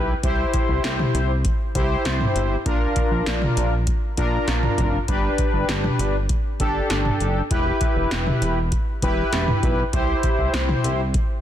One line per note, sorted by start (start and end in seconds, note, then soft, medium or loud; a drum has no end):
0.00 0.14 B1 medium
0.00 0.14 E4 medium
0.00 0.14 G4 medium
0.00 0.14 B4 medium
0.23 0.45 C2 loud
0.23 1.31 E4 medium
0.23 1.31 G4 medium
0.23 1.31 C5 medium
0.23 kick loud
0.23 closed hi-hat medium
0.54 kick loud
0.54 closed hi-hat medium
0.69 0.80 C2 loud
0.84 1.05 C2 loud
0.84 snare loud
0.84 closed hi-hat medium
0.99 mid tom medium
1.14 1.46 C2 loud
1.14 closed hi-hat medium
1.45 kick loud
1.45 closed hi-hat medium
1.75 1.96 C2 medium
1.75 2.56 E4 medium
1.75 2.56 G4 medium
1.75 2.56 C5 medium
1.75 kick medium
1.75 closed hi-hat medium
2.05 2.26 C2 loud
2.05 snare loud
2.05 closed hi-hat medium
2.21 mid tom medium
2.36 2.57 G1 medium
2.36 closed hi-hat medium
2.66 2.87 A#1 loud
2.66 3.74 D4 medium
2.66 3.74 F4 medium
2.66 3.74 A#4 medium
2.66 kick loud
2.66 closed hi-hat medium
2.96 kick loud
2.96 closed hi-hat medium
3.11 3.22 A#1 loud
3.26 3.48 A#1 loud
3.26 snare loud
3.26 closed hi-hat medium
3.42 mid tom medium
3.57 3.88 A#1 loud
3.57 closed hi-hat medium
3.87 kick loud
3.87 closed hi-hat medium
4.17 4.39 A#1 loud
4.17 4.98 D4 medium
4.17 4.98 F4 medium
4.17 4.98 A#4 loud
4.17 kick medium
4.17 closed hi-hat medium
4.48 4.69 A#1 loud
4.48 snare loud
4.48 closed hi-hat medium
4.63 mid tom medium
4.78 4.99 F1 medium
4.78 kick medium
4.78 closed hi-hat medium
4.78 mid tom medium
5.08 5.29 G1 loud
5.08 6.16 D4 medium
5.08 6.16 G4 medium
5.08 6.16 B4 medium
5.08 kick loud
5.08 closed hi-hat medium
5.38 kick loud
5.38 closed hi-hat medium
5.54 5.64 G1 medium
5.69 5.90 G1 loud
5.69 snare loud
5.69 closed hi-hat medium
5.84 mid tom medium
5.99 6.31 G1 loud
5.99 closed hi-hat medium
6.29 kick loud
6.29 closed hi-hat medium
6.60 6.81 G1 loud
6.60 7.41 D4 medium
6.60 7.41 G4 medium
6.60 7.41 A4 loud
6.60 kick medium
6.60 closed hi-hat medium
6.90 7.11 G1 loud
6.90 snare loud
6.90 closed hi-hat medium
7.05 mid tom medium
7.20 7.42 F#1 medium
7.20 closed hi-hat medium
7.51 7.72 E1 loud
7.51 8.59 E4 medium
7.51 8.59 G4 medium
7.51 8.59 B4 loud
7.51 kick loud
7.51 closed hi-hat medium
7.81 kick loud
7.81 closed hi-hat medium
7.96 8.07 E1 loud
8.11 8.33 E1 loud
8.11 snare loud
8.11 closed hi-hat medium
8.27 mid tom medium
8.42 8.73 E1 loud
8.42 closed hi-hat medium
8.72 kick loud
8.72 closed hi-hat medium
9.02 9.24 E1 medium
9.02 9.83 E4 medium
9.02 9.83 G4 medium
9.02 9.83 B4 loud
9.02 kick medium
9.02 closed hi-hat medium
9.33 9.54 E1 loud
9.33 snare loud
9.33 closed hi-hat medium
9.48 mid tom medium
9.63 9.84 B1 medium
9.63 kick medium
9.63 closed hi-hat medium
9.93 10.14 C2 loud
9.93 11.01 E4 medium
9.93 11.01 G4 medium
9.93 11.01 C5 medium
9.93 kick loud
9.93 closed hi-hat medium
10.23 kick loud
10.23 closed hi-hat medium
10.39 10.49 C2 medium
10.54 10.75 C2 medium
10.54 snare loud
10.54 closed hi-hat medium
10.69 mid tom medium
10.84 11.16 C2 loud
10.84 closed hi-hat medium
11.14 kick loud
11.14 closed hi-hat medium